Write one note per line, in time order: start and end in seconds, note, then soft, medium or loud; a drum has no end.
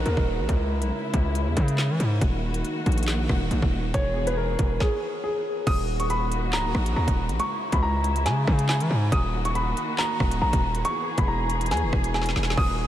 0.00 0.47 A#2 medium
0.00 0.47 D#3 medium
0.00 0.47 F#4 medium
0.06 0.17 D#2 loud
0.06 0.46 A#4 medium
0.06 closed hi-hat medium
0.17 0.40 D#1 loud
0.17 kick loud
0.39 0.48 A#1 loud
0.49 0.83 C#2 loud
0.49 2.20 C#3 medium
0.49 2.20 G#3 medium
0.49 2.20 E4 medium
0.49 kick loud
0.49 closed hi-hat medium
0.82 0.92 B1 loud
0.82 closed hi-hat medium
1.14 1.48 C#2 loud
1.14 kick loud
1.14 closed hi-hat medium
1.35 closed hi-hat medium
1.47 1.56 E2 loud
1.57 1.91 C#3 loud
1.57 kick medium
1.57 closed hi-hat medium
1.68 closed hi-hat medium
1.78 snare loud
1.78 clap medium
1.90 1.99 E3 loud
2.00 2.21 G#2 loud
2.00 closed hi-hat medium
2.21 2.63 D#1 loud
2.21 3.92 D#3 medium
2.21 3.92 A#3 medium
2.21 3.92 F#4 medium
2.21 kick loud
2.21 closed hi-hat medium
2.54 closed hi-hat medium
2.65 closed hi-hat medium
2.86 3.28 A#1 loud
2.86 kick medium
2.86 closed hi-hat soft
2.92 closed hi-hat medium
2.98 closed hi-hat medium
3.03 closed hi-hat medium
3.08 snare loud
3.08 clap medium
3.08 closed hi-hat medium
3.29 3.50 D#1 loud
3.29 kick medium
3.29 cross-stick medium
3.51 3.62 A#1 loud
3.51 closed hi-hat medium
3.62 3.93 D#1 loud
3.62 kick loud
3.94 4.56 E1 loud
3.94 4.80 E3 medium
3.94 4.80 B3 medium
3.94 4.80 G#4 medium
3.94 4.25 C#5 loud
3.94 kick loud
3.94 closed hi-hat medium
4.27 4.35 B4 medium
4.27 closed hi-hat medium
4.37 4.78 A#4 medium
4.59 4.80 E1 loud
4.59 kick medium
4.59 closed hi-hat medium
4.80 5.21 G#4 medium
4.80 kick loud
4.80 snare medium
5.24 5.64 G#4 medium
5.67 6.55 D#1 loud
5.67 7.38 D#3 medium
5.67 7.38 A#3 medium
5.67 7.38 F#4 medium
5.67 5.98 D#6 loud
5.67 kick loud
5.67 closed hi-hat medium
5.67 crash loud
6.00 6.08 C#6 medium
6.00 closed hi-hat medium
6.10 6.51 B5 medium
6.10 closed hi-hat medium
6.32 closed hi-hat medium
6.53 6.66 C#1 loud
6.53 6.94 A#5 loud
6.53 snare loud
6.53 clap loud
6.65 6.74 D#1 loud
6.75 6.95 A#1 loud
6.75 kick loud
6.75 cross-stick medium
6.86 closed hi-hat medium
6.96 7.07 D#2 loud
6.96 7.37 A#5 medium
7.08 7.31 D#1 loud
7.08 kick loud
7.08 closed hi-hat medium
7.29 7.39 A#1 loud
7.29 closed hi-hat medium
7.39 9.10 C#3 medium
7.39 9.10 G#3 medium
7.39 9.10 E4 medium
7.39 7.71 C#6 loud
7.39 closed hi-hat medium
7.72 8.27 C#2 loud
7.72 7.81 B5 medium
7.72 kick loud
7.72 closed hi-hat medium
7.83 8.23 A#5 medium
8.04 closed hi-hat medium
8.16 closed hi-hat medium
8.26 8.46 C#3 loud
8.26 8.66 G#5 medium
8.26 snare medium
8.26 closed hi-hat medium
8.47 8.82 C#3 loud
8.47 kick medium
8.47 cross-stick medium
8.59 closed hi-hat medium
8.69 9.09 G#5 medium
8.69 snare loud
8.69 clap medium
8.80 8.90 E3 loud
8.80 closed hi-hat medium
8.90 9.11 G#2 loud
9.12 9.74 D#1 loud
9.12 10.83 D#3 medium
9.12 10.83 A#3 medium
9.12 10.83 F#4 medium
9.12 9.43 D#6 loud
9.12 kick loud
9.12 closed hi-hat medium
9.45 9.53 C#6 medium
9.45 closed hi-hat medium
9.55 9.96 B5 medium
9.55 closed hi-hat medium
9.77 closed hi-hat medium
9.98 10.39 A#5 loud
9.98 snare loud
9.98 clap loud
10.20 10.41 D#1 loud
10.20 kick medium
10.20 cross-stick medium
10.31 closed hi-hat medium
10.42 10.53 A#1 loud
10.42 10.82 A#5 medium
10.53 10.84 D#1 loud
10.53 kick loud
10.53 closed hi-hat medium
10.75 closed hi-hat medium
10.85 12.56 E3 medium
10.85 12.56 B3 medium
10.85 12.56 G#4 medium
10.85 11.16 C#6 loud
10.85 closed hi-hat medium
11.18 11.73 E1 loud
11.18 11.26 B5 medium
11.18 kick loud
11.18 closed hi-hat medium
11.28 11.68 A#5 medium
11.50 closed hi-hat medium
11.61 closed hi-hat medium
11.66 closed hi-hat medium
11.71 11.84 E2 loud
11.71 12.12 G#5 medium
11.71 snare medium
11.71 closed hi-hat medium
11.77 closed hi-hat soft
11.83 11.92 E1 loud
11.93 12.34 E1 loud
11.93 kick loud
11.93 cross-stick loud
12.04 closed hi-hat medium
12.14 12.55 G#5 medium
12.14 snare medium
12.22 snare medium
12.26 snare medium
12.26 closed hi-hat medium
12.36 12.57 E1 loud
12.36 snare medium
12.43 snare loud
12.50 snare loud
12.57 12.87 D#1 loud
12.57 12.87 D#3 medium
12.57 12.87 A#3 medium
12.57 12.87 F#4 medium
12.57 12.87 D#6 loud
12.57 kick loud
12.57 crash medium